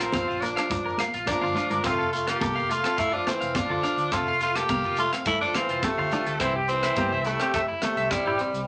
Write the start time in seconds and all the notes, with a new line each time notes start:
Already playing: F3 C4
0.00 A#4, cross-stick, closed hi-hat, shekere
0.12 F2 C4 F5, kick, closed hi-hat, high conga, shekere
0.28 A#1 F4, shekere
0.41 F3 A#3 D4, closed hi-hat, shekere
0.56 D4 F5, cross-stick, closed hi-hat
0.70 muted clean electric guitar stroke, kick, closed hi-hat, muted conga, low conga, shekere
0.86 A#4, shekere
0.98 A#3 F5, cross-stick, closed hi-hat, high conga
1.02 shekere
1.14 A#1 F4, closed hi-hat, shekere
1.26 F3 D4 A#4, kick, cross-stick, closed hi-hat, high conga
1.31 shekere
1.41 G1 F4 F5, high conga
1.46 shekere
1.55 D4 F4, closed hi-hat, low conga, shekere
1.70 G1 A#4, closed hi-hat, low conga, shekere
1.84 F1 C4 F4, kick, cross-stick, closed hi-hat, muted conga, shekere
1.88 A3
1.99 A4, shekere
2.13 A3 F4, closed hi-hat, muted conga, shekere
2.27 A#3 F4 G4, cross-stick, closed hi-hat
2.40 C2 A#3 A4, kick, closed hi-hat, high conga, shekere
2.55 F1 F5, shekere
2.69 A3 F4, closed hi-hat, shekere
2.84 C4 A4, cross-stick, closed hi-hat
2.97 A3 E4 F5, kick, closed hi-hat, muted conga, shekere
3.12 F3 D4 F4
3.27 E3 A3 C4, cross-stick, closed hi-hat, high conga, shekere
3.41 F1 F5, closed hi-hat
3.55 F3 C4 D4 F4, kick, cross-stick, closed hi-hat, high conga, shekere
3.68 D2 F4 A4
3.83 D4 F5, closed hi-hat, muted conga, shekere
3.97 D2, closed hi-hat, shekere
4.12 F1 A3 C4 F4 A4, kick, cross-stick, closed hi-hat, muted conga, shekere
4.27 F5, shekere
4.41 A3 F4, closed hi-hat, muted conga, shekere
4.56 A#3 G4 A4, cross-stick, closed hi-hat
4.69 C2 A#3 F5, kick, closed hi-hat, high conga, shekere
4.83 F1 F4, shekere
4.96 A3 F4, closed hi-hat, shekere
5.13 C4 F5, cross-stick, closed hi-hat
5.26 A3 E4, kick, closed hi-hat, muted conga, low conga, shekere
5.41 F3 D4 A4
5.54 E3 C4 F5, cross-stick, closed hi-hat, high conga, shekere
5.69 F1 F4, closed hi-hat
5.83 C3 A3 C4 A4, kick, cross-stick, closed hi-hat, high conga, shekere
5.98 D2 F4 F5
6.11 D4 F4, closed hi-hat, muted conga, low conga, shekere
6.26 D2 A4, closed hi-hat, shekere
6.40 C2 E3 C4 E4, kick, cross-stick, closed hi-hat, muted conga, shekere
6.56 G4
6.69 E3 C4, closed hi-hat, muted conga, shekere
6.83 E4, cross-stick, closed hi-hat
6.96 G2 A#3 G4, kick, closed hi-hat, high conga, shekere
7.11 C2 E5, shekere
7.25 A3 E4, closed hi-hat, shekere
7.29 C3
7.40 C4 G4, cross-stick, closed hi-hat
7.54 A3 E5, kick, closed hi-hat, muted conga, shekere
7.58 C3
7.68 E4
7.82 C3 A3, cross-stick, closed hi-hat, high conga, shekere
7.97 C2 E5, closed hi-hat
8.10 G3 C4 E4, kick, cross-stick, closed hi-hat, high conga, shekere
8.15 C3
8.26 A1 E4 G4
8.38 C4, muted clean electric guitar stroke, closed hi-hat, muted conga
8.54 C2, closed hi-hat, shekere